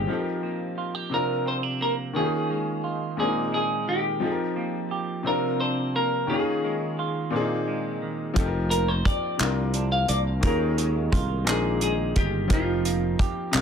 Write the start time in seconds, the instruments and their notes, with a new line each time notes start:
Already playing: grand piano A#2 G#3 A#3 C4, clean electric guitar A#2 C4 G4
0.07 grand piano F3 C4 D#4, clean electric guitar F3
0.11 grand piano G4 A4
0.19 grand piano A#4
0.43 clean electric guitar A#3
0.78 clean electric guitar F4
0.95 clean electric guitar G4
1.10 grand piano C3 C4 D4, clean electric guitar C3
1.14 grand piano F4 A#4, clean electric guitar A#4
1.46 clean electric guitar C4 C5
1.63 clean electric guitar D4
1.81 clean electric guitar A#3 A#4
2.13 grand piano D#3 A#3 C#4, clean electric guitar D#3 G#4
2.17 grand piano F4 G4
2.25 grand piano G#4
2.50 clean electric guitar G#3
2.84 clean electric guitar F4
3.17 grand piano A#2 G#3 C4, clean electric guitar A#2 G#4
3.21 grand piano D4 A#4
3.28 grand piano D#4
3.52 clean electric guitar G#3 G#4
3.88 clean electric guitar D#3 G4
4.20 grand piano F3 C4 D#4, clean electric guitar F3
4.24 grand piano G4 G#4
4.32 grand piano A#4
4.56 clean electric guitar A#3
4.91 clean electric guitar G4
5.23 grand piano C3 C4 D4, clean electric guitar C3
5.27 grand piano F4 A#4, clean electric guitar A#4
5.60 clean electric guitar D4 C5
5.96 clean electric guitar A#3 A#4
6.27 grand piano D#3 A#3 C#4, clean electric guitar D#3 G#4
6.31 grand piano F4 G4
6.39 grand piano G#4
6.64 clean electric guitar G#3
6.99 clean electric guitar F4
7.30 grand piano A#2 A#3 C4 D4, clean electric guitar A#2
7.36 clean electric guitar G4, grand piano G#4
7.41 grand piano D#4
7.67 clean electric guitar G#3
8.02 clean electric guitar D#3
8.34 fretless electric bass F1, grand piano F3 C4 D#4, clean electric guitar F3, kick, closed hi-hat
8.38 grand piano G4 A4
8.46 grand piano A#4
8.70 clean electric guitar A#3 A#4, closed hi-hat
8.88 clean electric guitar C5
9.05 clean electric guitar G4 D5, muted fretless electric bass stroke, kick, closed hi-hat
9.37 fretless electric bass C2, grand piano C3 C4 D4, clean electric guitar C3, clap, closed hi-hat
9.42 grand piano F4 A#4
9.74 clean electric guitar D4, closed hi-hat
9.92 clean electric guitar F5
10.08 fretless electric bass C2, clean electric guitar A#3 D5, closed hi-hat
10.41 fretless electric bass D#2, grand piano D#3 A#3 C#4, clean electric guitar D#3 A#4, kick, closed hi-hat
10.45 grand piano F4 G#4
10.77 clean electric guitar G#3, closed hi-hat
11.12 fretless electric bass C2, clean electric guitar F4, kick, closed hi-hat
11.44 fretless electric bass A#1, grand piano A#2 G#3 C4, clean electric guitar A#2 G#4, clap, closed hi-hat
11.49 grand piano D#4 A#4
11.81 clean electric guitar G#3 G#4, closed hi-hat
12.16 fretless electric bass G1, clean electric guitar D#3 G4, kick, closed hi-hat
12.48 fretless electric bass F1, grand piano F3 C4 D#4, clean electric guitar F3, kick, closed hi-hat
12.52 clean electric guitar F4, grand piano G4 A#4
12.85 clean electric guitar A#3, closed hi-hat
13.19 clean electric guitar G4, muted fretless electric bass stroke, kick, closed hi-hat
13.51 fretless electric bass C2, grand piano C3 C4 D4, clean electric guitar C3, clap, closed hi-hat
13.55 grand piano F4 A#4